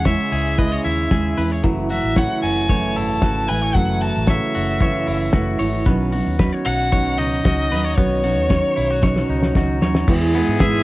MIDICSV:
0, 0, Header, 1, 7, 480
1, 0, Start_track
1, 0, Tempo, 527241
1, 1499, Time_signature, 4, 2, 24, 8
1, 9861, End_track
2, 0, Start_track
2, 0, Title_t, "Violin"
2, 0, Program_c, 0, 40
2, 57, Note_on_c, 0, 76, 84
2, 528, Note_on_c, 0, 75, 86
2, 542, Note_off_c, 0, 76, 0
2, 758, Note_off_c, 0, 75, 0
2, 764, Note_on_c, 0, 76, 73
2, 1217, Note_off_c, 0, 76, 0
2, 1743, Note_on_c, 0, 76, 82
2, 1984, Note_on_c, 0, 78, 84
2, 1997, Note_off_c, 0, 76, 0
2, 2201, Note_off_c, 0, 78, 0
2, 2206, Note_on_c, 0, 80, 87
2, 2695, Note_on_c, 0, 81, 94
2, 2709, Note_off_c, 0, 80, 0
2, 3168, Note_on_c, 0, 80, 100
2, 3182, Note_off_c, 0, 81, 0
2, 3410, Note_on_c, 0, 78, 93
2, 3423, Note_off_c, 0, 80, 0
2, 3654, Note_on_c, 0, 81, 95
2, 3667, Note_off_c, 0, 78, 0
2, 3904, Note_on_c, 0, 76, 81
2, 3917, Note_off_c, 0, 81, 0
2, 4864, Note_off_c, 0, 76, 0
2, 6056, Note_on_c, 0, 78, 108
2, 6536, Note_on_c, 0, 75, 93
2, 6550, Note_off_c, 0, 78, 0
2, 7245, Note_on_c, 0, 73, 96
2, 7259, Note_off_c, 0, 75, 0
2, 8691, Note_off_c, 0, 73, 0
2, 9645, Note_on_c, 0, 76, 90
2, 9861, Note_off_c, 0, 76, 0
2, 9861, End_track
3, 0, Start_track
3, 0, Title_t, "Trumpet"
3, 0, Program_c, 1, 56
3, 9183, Note_on_c, 1, 68, 102
3, 9861, Note_off_c, 1, 68, 0
3, 9861, End_track
4, 0, Start_track
4, 0, Title_t, "Clean electric guitar"
4, 0, Program_c, 2, 27
4, 0, Note_on_c, 2, 49, 82
4, 0, Note_on_c, 2, 68, 55
4, 46, Note_on_c, 2, 73, 63
4, 282, Note_off_c, 2, 68, 0
4, 293, Note_on_c, 2, 68, 58
4, 528, Note_off_c, 2, 73, 0
4, 531, Note_on_c, 2, 71, 62
4, 652, Note_off_c, 2, 71, 0
4, 652, Note_on_c, 2, 73, 51
4, 771, Note_on_c, 2, 64, 56
4, 1006, Note_off_c, 2, 68, 0
4, 1016, Note_on_c, 2, 68, 58
4, 1248, Note_off_c, 2, 73, 0
4, 1252, Note_on_c, 2, 71, 60
4, 1380, Note_off_c, 2, 71, 0
4, 1380, Note_on_c, 2, 73, 55
4, 1492, Note_on_c, 2, 54, 80
4, 1496, Note_off_c, 2, 49, 0
4, 1547, Note_off_c, 2, 68, 0
4, 1548, Note_off_c, 2, 73, 0
4, 1732, Note_on_c, 2, 66, 61
4, 1759, Note_off_c, 2, 64, 0
4, 1973, Note_on_c, 2, 73, 68
4, 2208, Note_off_c, 2, 66, 0
4, 2212, Note_on_c, 2, 66, 60
4, 2450, Note_off_c, 2, 73, 0
4, 2454, Note_on_c, 2, 73, 65
4, 2697, Note_on_c, 2, 64, 58
4, 2936, Note_off_c, 2, 66, 0
4, 2940, Note_on_c, 2, 66, 48
4, 3169, Note_off_c, 2, 73, 0
4, 3173, Note_on_c, 2, 71, 61
4, 3293, Note_off_c, 2, 71, 0
4, 3293, Note_on_c, 2, 73, 52
4, 3417, Note_off_c, 2, 54, 0
4, 3421, Note_on_c, 2, 54, 85
4, 3656, Note_off_c, 2, 66, 0
4, 3659, Note_on_c, 2, 66, 55
4, 3884, Note_off_c, 2, 73, 0
4, 3895, Note_on_c, 2, 73, 72
4, 4137, Note_off_c, 2, 66, 0
4, 4140, Note_on_c, 2, 66, 64
4, 4382, Note_off_c, 2, 73, 0
4, 4385, Note_on_c, 2, 73, 72
4, 4607, Note_off_c, 2, 64, 0
4, 4617, Note_on_c, 2, 64, 59
4, 4851, Note_off_c, 2, 66, 0
4, 4854, Note_on_c, 2, 66, 58
4, 5088, Note_off_c, 2, 73, 0
4, 5092, Note_on_c, 2, 73, 67
4, 5336, Note_on_c, 2, 59, 86
4, 5389, Note_off_c, 2, 64, 0
4, 5572, Note_off_c, 2, 66, 0
4, 5576, Note_on_c, 2, 66, 56
4, 5817, Note_off_c, 2, 73, 0
4, 5821, Note_on_c, 2, 71, 74
4, 5941, Note_off_c, 2, 71, 0
4, 5941, Note_on_c, 2, 73, 62
4, 6048, Note_off_c, 2, 66, 0
4, 6059, Note_on_c, 2, 66, 60
4, 6290, Note_off_c, 2, 73, 0
4, 6301, Note_on_c, 2, 73, 71
4, 6543, Note_on_c, 2, 63, 56
4, 6607, Note_off_c, 2, 54, 0
4, 6769, Note_off_c, 2, 66, 0
4, 6780, Note_on_c, 2, 66, 58
4, 7022, Note_off_c, 2, 73, 0
4, 7026, Note_on_c, 2, 71, 63
4, 7142, Note_off_c, 2, 71, 0
4, 7142, Note_on_c, 2, 73, 57
4, 7258, Note_off_c, 2, 59, 0
4, 7262, Note_on_c, 2, 59, 83
4, 7490, Note_off_c, 2, 66, 0
4, 7501, Note_on_c, 2, 66, 63
4, 7729, Note_off_c, 2, 73, 0
4, 7740, Note_on_c, 2, 73, 75
4, 7973, Note_off_c, 2, 66, 0
4, 7977, Note_on_c, 2, 64, 66
4, 8108, Note_off_c, 2, 64, 0
4, 8108, Note_on_c, 2, 66, 48
4, 8214, Note_off_c, 2, 73, 0
4, 8224, Note_on_c, 2, 73, 74
4, 8454, Note_off_c, 2, 63, 0
4, 8465, Note_on_c, 2, 63, 59
4, 8697, Note_off_c, 2, 66, 0
4, 8708, Note_on_c, 2, 66, 61
4, 8931, Note_off_c, 2, 73, 0
4, 8942, Note_on_c, 2, 73, 56
4, 9228, Note_off_c, 2, 63, 0
4, 9228, Note_off_c, 2, 73, 0
4, 9230, Note_off_c, 2, 66, 0
4, 9423, Note_off_c, 2, 59, 0
4, 9423, Note_on_c, 2, 59, 57
4, 9657, Note_on_c, 2, 68, 71
4, 9861, Note_off_c, 2, 59, 0
4, 9861, Note_off_c, 2, 68, 0
4, 9861, End_track
5, 0, Start_track
5, 0, Title_t, "Steel-string acoustic guitar"
5, 0, Program_c, 3, 25
5, 40, Note_on_c, 3, 49, 57
5, 48, Note_on_c, 3, 56, 62
5, 50, Note_on_c, 3, 61, 61
5, 56, Note_on_c, 3, 64, 69
5, 509, Note_off_c, 3, 49, 0
5, 516, Note_off_c, 3, 56, 0
5, 519, Note_on_c, 3, 49, 66
5, 526, Note_off_c, 3, 64, 0
5, 527, Note_off_c, 3, 61, 0
5, 527, Note_on_c, 3, 56, 67
5, 529, Note_on_c, 3, 64, 77
5, 531, Note_on_c, 3, 61, 65
5, 996, Note_off_c, 3, 49, 0
5, 997, Note_off_c, 3, 56, 0
5, 1007, Note_on_c, 3, 49, 54
5, 1008, Note_on_c, 3, 56, 60
5, 1015, Note_off_c, 3, 61, 0
5, 1017, Note_off_c, 3, 64, 0
5, 1018, Note_on_c, 3, 61, 63
5, 1021, Note_on_c, 3, 64, 59
5, 1243, Note_off_c, 3, 64, 0
5, 1252, Note_off_c, 3, 61, 0
5, 1253, Note_off_c, 3, 49, 0
5, 1254, Note_off_c, 3, 56, 0
5, 1254, Note_on_c, 3, 64, 46
5, 1263, Note_on_c, 3, 61, 34
5, 1271, Note_on_c, 3, 56, 38
5, 1481, Note_off_c, 3, 64, 0
5, 1482, Note_on_c, 3, 42, 69
5, 1485, Note_on_c, 3, 49, 70
5, 1486, Note_off_c, 3, 56, 0
5, 1486, Note_off_c, 3, 61, 0
5, 1490, Note_on_c, 3, 52, 87
5, 1490, Note_on_c, 3, 57, 82
5, 1492, Note_on_c, 3, 64, 74
5, 1710, Note_off_c, 3, 64, 0
5, 1721, Note_on_c, 3, 64, 46
5, 1723, Note_off_c, 3, 57, 0
5, 1730, Note_off_c, 3, 52, 0
5, 1731, Note_off_c, 3, 42, 0
5, 1732, Note_off_c, 3, 49, 0
5, 1734, Note_on_c, 3, 57, 47
5, 1741, Note_on_c, 3, 52, 41
5, 1955, Note_off_c, 3, 52, 0
5, 1963, Note_off_c, 3, 64, 0
5, 1963, Note_on_c, 3, 49, 59
5, 1964, Note_off_c, 3, 57, 0
5, 1966, Note_on_c, 3, 52, 58
5, 1974, Note_on_c, 3, 57, 65
5, 1974, Note_on_c, 3, 64, 71
5, 2442, Note_off_c, 3, 52, 0
5, 2444, Note_off_c, 3, 49, 0
5, 2446, Note_off_c, 3, 57, 0
5, 2448, Note_on_c, 3, 42, 74
5, 2452, Note_off_c, 3, 64, 0
5, 2453, Note_on_c, 3, 52, 74
5, 2455, Note_on_c, 3, 49, 69
5, 2457, Note_on_c, 3, 57, 84
5, 2463, Note_on_c, 3, 64, 81
5, 2920, Note_off_c, 3, 49, 0
5, 2924, Note_off_c, 3, 52, 0
5, 2928, Note_off_c, 3, 57, 0
5, 2931, Note_on_c, 3, 49, 66
5, 2935, Note_on_c, 3, 52, 56
5, 2936, Note_off_c, 3, 42, 0
5, 2937, Note_off_c, 3, 64, 0
5, 2939, Note_on_c, 3, 57, 60
5, 2948, Note_on_c, 3, 64, 71
5, 3161, Note_off_c, 3, 64, 0
5, 3171, Note_on_c, 3, 64, 46
5, 3175, Note_off_c, 3, 57, 0
5, 3177, Note_off_c, 3, 49, 0
5, 3179, Note_off_c, 3, 52, 0
5, 3186, Note_on_c, 3, 57, 44
5, 3189, Note_on_c, 3, 52, 39
5, 3409, Note_off_c, 3, 52, 0
5, 3412, Note_off_c, 3, 57, 0
5, 3417, Note_on_c, 3, 42, 71
5, 3418, Note_off_c, 3, 64, 0
5, 3420, Note_on_c, 3, 52, 70
5, 3421, Note_on_c, 3, 49, 67
5, 3423, Note_on_c, 3, 57, 70
5, 3428, Note_on_c, 3, 64, 80
5, 3889, Note_off_c, 3, 49, 0
5, 3890, Note_off_c, 3, 52, 0
5, 3899, Note_off_c, 3, 57, 0
5, 3900, Note_on_c, 3, 49, 61
5, 3901, Note_off_c, 3, 42, 0
5, 3901, Note_on_c, 3, 52, 63
5, 3903, Note_off_c, 3, 64, 0
5, 3910, Note_on_c, 3, 57, 67
5, 3914, Note_on_c, 3, 64, 71
5, 4368, Note_off_c, 3, 49, 0
5, 4374, Note_off_c, 3, 52, 0
5, 4377, Note_off_c, 3, 57, 0
5, 4377, Note_off_c, 3, 64, 0
5, 4377, Note_on_c, 3, 42, 65
5, 4379, Note_on_c, 3, 49, 82
5, 4384, Note_on_c, 3, 52, 79
5, 4387, Note_on_c, 3, 57, 72
5, 4387, Note_on_c, 3, 64, 75
5, 4844, Note_off_c, 3, 49, 0
5, 4853, Note_off_c, 3, 52, 0
5, 4855, Note_on_c, 3, 49, 61
5, 4859, Note_off_c, 3, 57, 0
5, 4859, Note_off_c, 3, 64, 0
5, 4861, Note_off_c, 3, 42, 0
5, 4863, Note_on_c, 3, 52, 73
5, 4870, Note_on_c, 3, 57, 71
5, 4870, Note_on_c, 3, 64, 70
5, 5083, Note_off_c, 3, 64, 0
5, 5094, Note_off_c, 3, 57, 0
5, 5094, Note_on_c, 3, 64, 48
5, 5100, Note_off_c, 3, 49, 0
5, 5100, Note_off_c, 3, 52, 0
5, 5105, Note_on_c, 3, 57, 49
5, 5111, Note_on_c, 3, 52, 42
5, 5339, Note_off_c, 3, 64, 0
5, 5339, Note_on_c, 3, 47, 76
5, 5340, Note_off_c, 3, 52, 0
5, 5340, Note_on_c, 3, 51, 78
5, 5343, Note_off_c, 3, 57, 0
5, 5343, Note_on_c, 3, 63, 92
5, 5344, Note_on_c, 3, 54, 85
5, 5347, Note_on_c, 3, 61, 87
5, 5569, Note_off_c, 3, 63, 0
5, 5579, Note_on_c, 3, 63, 58
5, 5582, Note_off_c, 3, 47, 0
5, 5582, Note_off_c, 3, 51, 0
5, 5582, Note_off_c, 3, 61, 0
5, 5584, Note_off_c, 3, 54, 0
5, 5592, Note_on_c, 3, 61, 59
5, 5593, Note_on_c, 3, 54, 46
5, 5806, Note_off_c, 3, 54, 0
5, 5807, Note_on_c, 3, 51, 63
5, 5809, Note_off_c, 3, 61, 0
5, 5815, Note_off_c, 3, 63, 0
5, 5817, Note_on_c, 3, 54, 60
5, 5820, Note_on_c, 3, 61, 85
5, 5826, Note_on_c, 3, 63, 77
5, 6286, Note_off_c, 3, 51, 0
5, 6288, Note_off_c, 3, 54, 0
5, 6289, Note_off_c, 3, 61, 0
5, 6291, Note_off_c, 3, 63, 0
5, 6294, Note_on_c, 3, 47, 79
5, 6297, Note_on_c, 3, 51, 73
5, 6299, Note_on_c, 3, 54, 79
5, 6300, Note_on_c, 3, 61, 87
5, 6302, Note_on_c, 3, 63, 83
5, 6770, Note_off_c, 3, 51, 0
5, 6777, Note_off_c, 3, 61, 0
5, 6778, Note_off_c, 3, 54, 0
5, 6779, Note_off_c, 3, 47, 0
5, 6781, Note_on_c, 3, 51, 57
5, 6783, Note_off_c, 3, 63, 0
5, 6788, Note_on_c, 3, 61, 66
5, 6789, Note_on_c, 3, 54, 68
5, 6795, Note_on_c, 3, 63, 67
5, 7013, Note_off_c, 3, 63, 0
5, 7020, Note_off_c, 3, 61, 0
5, 7022, Note_off_c, 3, 51, 0
5, 7024, Note_on_c, 3, 63, 47
5, 7026, Note_off_c, 3, 54, 0
5, 7031, Note_on_c, 3, 61, 41
5, 7040, Note_on_c, 3, 54, 40
5, 7255, Note_off_c, 3, 54, 0
5, 7256, Note_off_c, 3, 61, 0
5, 7257, Note_off_c, 3, 63, 0
5, 7259, Note_on_c, 3, 47, 82
5, 7261, Note_on_c, 3, 51, 67
5, 7266, Note_on_c, 3, 54, 68
5, 7267, Note_on_c, 3, 61, 83
5, 7268, Note_on_c, 3, 63, 85
5, 7488, Note_off_c, 3, 63, 0
5, 7495, Note_off_c, 3, 61, 0
5, 7499, Note_on_c, 3, 63, 52
5, 7501, Note_off_c, 3, 47, 0
5, 7502, Note_off_c, 3, 51, 0
5, 7502, Note_off_c, 3, 54, 0
5, 7506, Note_on_c, 3, 61, 52
5, 7513, Note_on_c, 3, 54, 44
5, 7729, Note_off_c, 3, 54, 0
5, 7731, Note_off_c, 3, 61, 0
5, 7732, Note_on_c, 3, 51, 71
5, 7740, Note_on_c, 3, 54, 70
5, 7741, Note_off_c, 3, 63, 0
5, 7742, Note_on_c, 3, 61, 64
5, 7753, Note_on_c, 3, 63, 67
5, 8200, Note_off_c, 3, 51, 0
5, 8203, Note_off_c, 3, 54, 0
5, 8205, Note_on_c, 3, 47, 86
5, 8208, Note_off_c, 3, 61, 0
5, 8211, Note_on_c, 3, 51, 93
5, 8213, Note_off_c, 3, 63, 0
5, 8214, Note_on_c, 3, 54, 81
5, 8218, Note_on_c, 3, 61, 94
5, 8224, Note_on_c, 3, 63, 95
5, 8674, Note_off_c, 3, 51, 0
5, 8684, Note_off_c, 3, 54, 0
5, 8685, Note_on_c, 3, 51, 71
5, 8690, Note_off_c, 3, 61, 0
5, 8692, Note_off_c, 3, 47, 0
5, 8692, Note_off_c, 3, 63, 0
5, 8695, Note_on_c, 3, 54, 73
5, 8701, Note_on_c, 3, 61, 77
5, 8703, Note_on_c, 3, 63, 68
5, 8918, Note_off_c, 3, 63, 0
5, 8929, Note_on_c, 3, 63, 54
5, 8930, Note_off_c, 3, 61, 0
5, 8932, Note_off_c, 3, 51, 0
5, 8937, Note_off_c, 3, 54, 0
5, 8941, Note_on_c, 3, 61, 51
5, 8950, Note_on_c, 3, 54, 44
5, 9172, Note_off_c, 3, 54, 0
5, 9173, Note_off_c, 3, 63, 0
5, 9173, Note_on_c, 3, 52, 80
5, 9176, Note_on_c, 3, 56, 83
5, 9177, Note_off_c, 3, 61, 0
5, 9181, Note_on_c, 3, 59, 101
5, 9181, Note_on_c, 3, 64, 98
5, 9406, Note_off_c, 3, 64, 0
5, 9414, Note_off_c, 3, 59, 0
5, 9415, Note_off_c, 3, 52, 0
5, 9416, Note_off_c, 3, 56, 0
5, 9417, Note_on_c, 3, 64, 68
5, 9425, Note_on_c, 3, 59, 65
5, 9436, Note_on_c, 3, 56, 62
5, 9650, Note_off_c, 3, 56, 0
5, 9653, Note_off_c, 3, 59, 0
5, 9654, Note_on_c, 3, 52, 80
5, 9657, Note_off_c, 3, 64, 0
5, 9661, Note_on_c, 3, 56, 94
5, 9664, Note_on_c, 3, 59, 93
5, 9666, Note_on_c, 3, 64, 100
5, 9861, Note_off_c, 3, 52, 0
5, 9861, Note_off_c, 3, 56, 0
5, 9861, Note_off_c, 3, 59, 0
5, 9861, Note_off_c, 3, 64, 0
5, 9861, End_track
6, 0, Start_track
6, 0, Title_t, "Fingered electric bass"
6, 0, Program_c, 4, 33
6, 0, Note_on_c, 4, 40, 93
6, 133, Note_off_c, 4, 40, 0
6, 291, Note_on_c, 4, 37, 78
6, 702, Note_off_c, 4, 37, 0
6, 777, Note_on_c, 4, 39, 74
6, 982, Note_off_c, 4, 39, 0
6, 1013, Note_on_c, 4, 39, 81
6, 1220, Note_off_c, 4, 39, 0
6, 1257, Note_on_c, 4, 40, 74
6, 1462, Note_off_c, 4, 40, 0
6, 1494, Note_on_c, 4, 30, 100
6, 1803, Note_off_c, 4, 30, 0
6, 1854, Note_on_c, 4, 33, 97
6, 2061, Note_off_c, 4, 33, 0
6, 2215, Note_on_c, 4, 30, 80
6, 2699, Note_off_c, 4, 30, 0
6, 2699, Note_on_c, 4, 32, 86
6, 2904, Note_off_c, 4, 32, 0
6, 2936, Note_on_c, 4, 32, 91
6, 3143, Note_off_c, 4, 32, 0
6, 3184, Note_on_c, 4, 33, 85
6, 3388, Note_off_c, 4, 33, 0
6, 3416, Note_on_c, 4, 30, 96
6, 3725, Note_off_c, 4, 30, 0
6, 3791, Note_on_c, 4, 33, 91
6, 3992, Note_off_c, 4, 33, 0
6, 4152, Note_on_c, 4, 30, 95
6, 4455, Note_off_c, 4, 30, 0
6, 4624, Note_on_c, 4, 30, 90
6, 4828, Note_off_c, 4, 30, 0
6, 4861, Note_on_c, 4, 30, 95
6, 5066, Note_off_c, 4, 30, 0
6, 5103, Note_on_c, 4, 32, 88
6, 5308, Note_off_c, 4, 32, 0
6, 5341, Note_on_c, 4, 35, 101
6, 5648, Note_off_c, 4, 35, 0
6, 5704, Note_on_c, 4, 39, 93
6, 5908, Note_off_c, 4, 39, 0
6, 6063, Note_on_c, 4, 35, 87
6, 6542, Note_off_c, 4, 35, 0
6, 6542, Note_on_c, 4, 37, 95
6, 6747, Note_off_c, 4, 37, 0
6, 6785, Note_on_c, 4, 37, 93
6, 6988, Note_off_c, 4, 37, 0
6, 7024, Note_on_c, 4, 39, 89
6, 7228, Note_off_c, 4, 39, 0
6, 7263, Note_on_c, 4, 35, 101
6, 7631, Note_off_c, 4, 35, 0
6, 7631, Note_on_c, 4, 39, 103
6, 7831, Note_off_c, 4, 39, 0
6, 7990, Note_on_c, 4, 35, 81
6, 8394, Note_off_c, 4, 35, 0
6, 8461, Note_on_c, 4, 37, 94
6, 8664, Note_off_c, 4, 37, 0
6, 8703, Note_on_c, 4, 37, 96
6, 8905, Note_off_c, 4, 37, 0
6, 8934, Note_on_c, 4, 39, 87
6, 9140, Note_off_c, 4, 39, 0
6, 9179, Note_on_c, 4, 40, 98
6, 9484, Note_off_c, 4, 40, 0
6, 9542, Note_on_c, 4, 44, 111
6, 9844, Note_off_c, 4, 44, 0
6, 9861, End_track
7, 0, Start_track
7, 0, Title_t, "Drums"
7, 45, Note_on_c, 9, 42, 64
7, 48, Note_on_c, 9, 36, 97
7, 49, Note_on_c, 9, 38, 98
7, 136, Note_off_c, 9, 42, 0
7, 139, Note_off_c, 9, 36, 0
7, 140, Note_off_c, 9, 38, 0
7, 295, Note_on_c, 9, 46, 70
7, 386, Note_off_c, 9, 46, 0
7, 532, Note_on_c, 9, 36, 114
7, 535, Note_on_c, 9, 42, 65
7, 623, Note_off_c, 9, 36, 0
7, 626, Note_off_c, 9, 42, 0
7, 778, Note_on_c, 9, 46, 66
7, 869, Note_off_c, 9, 46, 0
7, 1012, Note_on_c, 9, 36, 105
7, 1012, Note_on_c, 9, 38, 100
7, 1012, Note_on_c, 9, 42, 71
7, 1103, Note_off_c, 9, 36, 0
7, 1103, Note_off_c, 9, 38, 0
7, 1103, Note_off_c, 9, 42, 0
7, 1252, Note_on_c, 9, 46, 68
7, 1343, Note_off_c, 9, 46, 0
7, 1490, Note_on_c, 9, 42, 73
7, 1493, Note_on_c, 9, 36, 107
7, 1581, Note_off_c, 9, 42, 0
7, 1584, Note_off_c, 9, 36, 0
7, 1726, Note_on_c, 9, 46, 61
7, 1817, Note_off_c, 9, 46, 0
7, 1966, Note_on_c, 9, 42, 67
7, 1970, Note_on_c, 9, 38, 112
7, 1971, Note_on_c, 9, 36, 104
7, 2057, Note_off_c, 9, 42, 0
7, 2061, Note_off_c, 9, 38, 0
7, 2062, Note_off_c, 9, 36, 0
7, 2218, Note_on_c, 9, 46, 69
7, 2309, Note_off_c, 9, 46, 0
7, 2454, Note_on_c, 9, 36, 106
7, 2457, Note_on_c, 9, 42, 68
7, 2545, Note_off_c, 9, 36, 0
7, 2548, Note_off_c, 9, 42, 0
7, 2698, Note_on_c, 9, 46, 74
7, 2789, Note_off_c, 9, 46, 0
7, 2931, Note_on_c, 9, 38, 103
7, 2932, Note_on_c, 9, 42, 63
7, 2934, Note_on_c, 9, 36, 112
7, 3022, Note_off_c, 9, 38, 0
7, 3023, Note_off_c, 9, 42, 0
7, 3025, Note_off_c, 9, 36, 0
7, 3175, Note_on_c, 9, 46, 76
7, 3266, Note_off_c, 9, 46, 0
7, 3415, Note_on_c, 9, 36, 97
7, 3415, Note_on_c, 9, 42, 68
7, 3506, Note_off_c, 9, 36, 0
7, 3506, Note_off_c, 9, 42, 0
7, 3650, Note_on_c, 9, 46, 63
7, 3741, Note_off_c, 9, 46, 0
7, 3888, Note_on_c, 9, 42, 69
7, 3892, Note_on_c, 9, 38, 112
7, 3894, Note_on_c, 9, 36, 110
7, 3979, Note_off_c, 9, 42, 0
7, 3983, Note_off_c, 9, 38, 0
7, 3985, Note_off_c, 9, 36, 0
7, 4139, Note_on_c, 9, 46, 69
7, 4230, Note_off_c, 9, 46, 0
7, 4375, Note_on_c, 9, 42, 70
7, 4377, Note_on_c, 9, 36, 104
7, 4466, Note_off_c, 9, 42, 0
7, 4468, Note_off_c, 9, 36, 0
7, 4619, Note_on_c, 9, 46, 76
7, 4710, Note_off_c, 9, 46, 0
7, 4853, Note_on_c, 9, 38, 107
7, 4858, Note_on_c, 9, 36, 121
7, 4944, Note_off_c, 9, 38, 0
7, 4949, Note_off_c, 9, 36, 0
7, 5098, Note_on_c, 9, 46, 68
7, 5189, Note_off_c, 9, 46, 0
7, 5336, Note_on_c, 9, 42, 67
7, 5339, Note_on_c, 9, 36, 107
7, 5427, Note_off_c, 9, 42, 0
7, 5430, Note_off_c, 9, 36, 0
7, 5577, Note_on_c, 9, 46, 65
7, 5668, Note_off_c, 9, 46, 0
7, 5818, Note_on_c, 9, 42, 69
7, 5820, Note_on_c, 9, 36, 98
7, 5822, Note_on_c, 9, 38, 105
7, 5909, Note_off_c, 9, 42, 0
7, 5911, Note_off_c, 9, 36, 0
7, 5913, Note_off_c, 9, 38, 0
7, 6070, Note_on_c, 9, 46, 67
7, 6161, Note_off_c, 9, 46, 0
7, 6303, Note_on_c, 9, 36, 111
7, 6308, Note_on_c, 9, 42, 70
7, 6394, Note_off_c, 9, 36, 0
7, 6399, Note_off_c, 9, 42, 0
7, 6553, Note_on_c, 9, 46, 69
7, 6644, Note_off_c, 9, 46, 0
7, 6783, Note_on_c, 9, 36, 110
7, 6784, Note_on_c, 9, 38, 108
7, 6784, Note_on_c, 9, 42, 71
7, 6874, Note_off_c, 9, 36, 0
7, 6875, Note_off_c, 9, 38, 0
7, 6875, Note_off_c, 9, 42, 0
7, 7022, Note_on_c, 9, 46, 75
7, 7113, Note_off_c, 9, 46, 0
7, 7260, Note_on_c, 9, 42, 66
7, 7262, Note_on_c, 9, 36, 107
7, 7351, Note_off_c, 9, 42, 0
7, 7353, Note_off_c, 9, 36, 0
7, 7498, Note_on_c, 9, 46, 66
7, 7589, Note_off_c, 9, 46, 0
7, 7739, Note_on_c, 9, 36, 105
7, 7739, Note_on_c, 9, 42, 62
7, 7743, Note_on_c, 9, 38, 106
7, 7830, Note_off_c, 9, 36, 0
7, 7830, Note_off_c, 9, 42, 0
7, 7834, Note_off_c, 9, 38, 0
7, 7986, Note_on_c, 9, 46, 69
7, 8077, Note_off_c, 9, 46, 0
7, 8220, Note_on_c, 9, 36, 101
7, 8223, Note_on_c, 9, 38, 58
7, 8311, Note_off_c, 9, 36, 0
7, 8314, Note_off_c, 9, 38, 0
7, 8343, Note_on_c, 9, 38, 56
7, 8434, Note_off_c, 9, 38, 0
7, 8581, Note_on_c, 9, 38, 62
7, 8672, Note_off_c, 9, 38, 0
7, 8698, Note_on_c, 9, 36, 104
7, 8703, Note_on_c, 9, 38, 74
7, 8789, Note_off_c, 9, 36, 0
7, 8794, Note_off_c, 9, 38, 0
7, 8941, Note_on_c, 9, 38, 90
7, 9032, Note_off_c, 9, 38, 0
7, 9058, Note_on_c, 9, 38, 96
7, 9149, Note_off_c, 9, 38, 0
7, 9177, Note_on_c, 9, 36, 118
7, 9177, Note_on_c, 9, 49, 96
7, 9268, Note_off_c, 9, 36, 0
7, 9268, Note_off_c, 9, 49, 0
7, 9414, Note_on_c, 9, 46, 67
7, 9505, Note_off_c, 9, 46, 0
7, 9649, Note_on_c, 9, 51, 58
7, 9653, Note_on_c, 9, 36, 113
7, 9653, Note_on_c, 9, 38, 115
7, 9740, Note_off_c, 9, 51, 0
7, 9744, Note_off_c, 9, 36, 0
7, 9744, Note_off_c, 9, 38, 0
7, 9861, End_track
0, 0, End_of_file